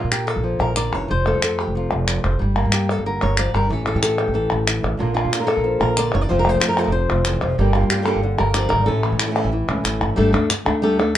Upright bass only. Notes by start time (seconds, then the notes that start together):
0.04 A#2
0.36 A#1
0.59 A#1
0.93 F#1
1.10 F1
1.35 F2
1.68 F1
1.92 F1
2.24 F1
2.42 G1
2.65 G2
2.98 G1
3.23 G1
3.54 G1
3.70 A1
3.95 A2
4.28 A1
4.52 A1
4.83 A1
5.00 A#1
5.25 A#2
5.57 A#1
5.80 A#1
6.14 F#1
6.31 F1
6.55 F2
6.87 F1
7.11 F1
7.42 F1
7.59 G1
7.83 G2
8.16 G1
8.40 G1
8.72 G#1
8.88 A1
9.12 A2
9.44 A1
9.68 C#2
9.84 A1
10.01 G1
10.18 G1
10.34 D2
10.66 D2